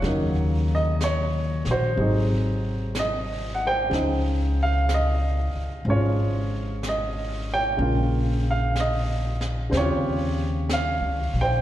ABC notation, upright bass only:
X:1
M:4/4
L:1/8
Q:"Swing" 1/4=62
K:Dblyd
V:1 name="Upright bass" clef=bass
E,,3 B,,, A,,,4 | D,,3 z A,,,4 | B,,,4 E,,2- (3E,, D,, B,,, |]